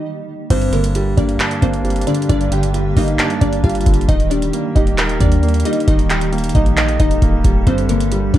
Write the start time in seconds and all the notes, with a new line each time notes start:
Already playing: D#4 D#5
0.50 G1 G2 D3 G3 A#3 C4 G4 C5, kick, closed hi-hat, crash
0.62 closed hi-hat
0.73 D3 A#3 A#4, closed hi-hat
0.84 closed hi-hat
0.95 G3, closed hi-hat
1.17 G1 A#3 D4 D5, kick, closed hi-hat
1.29 closed hi-hat
1.40 D4, clap, closed hi-hat
1.51 closed hi-hat
1.62 G1 A#3 C4 C5, kick, closed hi-hat
1.74 closed hi-hat
1.85 G3, closed hi-hat
1.90 closed hi-hat
1.96 closed hi-hat
2.01 closed hi-hat
2.07 D3 D4 D5, closed hi-hat
2.15 closed hi-hat
2.22 closed hi-hat
2.29 G1 G2 D4 D5, kick, closed hi-hat
2.41 closed hi-hat
2.52 D3 G4 G5, closed hi-hat
2.63 closed hi-hat
2.74 G3, closed hi-hat
2.96 G1 A#3 D#4 D#5, kick, open hi-hat
3.08 closed hi-hat
3.19 D4, clap, closed hi-hat
3.30 closed hi-hat
3.41 G1 A#3 D4 D5, kick, closed hi-hat
3.53 closed hi-hat
3.64 G1 G3 F4 F5, kick, closed hi-hat
3.69 closed hi-hat
3.75 closed hi-hat
3.81 closed hi-hat
3.86 F1 D3, kick, closed hi-hat
3.94 closed hi-hat
4.01 closed hi-hat
4.09 D#1 D#3 A#3 D#4 G4 D#5, kick, closed hi-hat
4.20 closed hi-hat
4.30 G3 D4 D5, closed hi-hat
4.42 closed hi-hat
4.53 A#3, closed hi-hat
4.75 D#1 D#4 G4 D#5, kick, closed hi-hat
4.87 closed hi-hat
4.98 A#4, clap, closed hi-hat
5.09 closed hi-hat
5.20 D#2 D4 D5, kick, closed hi-hat
5.32 closed hi-hat
5.43 A#3, closed hi-hat
5.49 closed hi-hat
5.54 closed hi-hat
5.60 closed hi-hat
5.65 G3 D#4 D#5, closed hi-hat
5.73 closed hi-hat
5.80 closed hi-hat
5.88 D#1 D#3 D#4 A4 D#5, kick, closed hi-hat
5.99 closed hi-hat
6.10 G3 G4 G5, clap, closed hi-hat
6.21 closed hi-hat
6.32 A#3, closed hi-hat
6.38 closed hi-hat
6.44 closed hi-hat
6.49 closed hi-hat
6.55 A#1 D#4 D#5, kick, closed hi-hat
6.66 closed hi-hat
6.77 D#5, clap, closed hi-hat
6.89 closed hi-hat
7.00 D#1 D#4 D#5, kick, closed hi-hat
7.11 closed hi-hat
7.22 D#1 A#3, kick, closed hi-hat
7.44 D#1 G3, kick, closed hi-hat
7.67 G1 G2 D3 A#3 C4 C5, kick, closed hi-hat
7.78 closed hi-hat
7.89 D3 A#3 A#4, closed hi-hat
8.00 closed hi-hat
8.12 G3, closed hi-hat
8.34 G1 A#3 D4 D5, kick, closed hi-hat